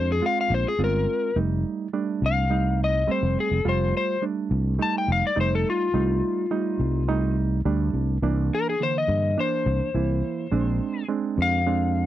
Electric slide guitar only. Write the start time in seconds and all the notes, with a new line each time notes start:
0.12 G#4
0.26 F5
0.41 F5
0.54 C5
0.68 G#4
0.84 A#4
2.26 F5
2.84 D#5
3.11 C5
3.40 G#4
3.69 C5
3.97 C5
4.82 A5
4.98 G5
5.12 F5
5.27 D5
5.41 C5
5.55 A4
5.70 F4
8.55 A#4
8.70 G#4
8.83 C5
8.98 D#5
9.40 C5
11.42 F5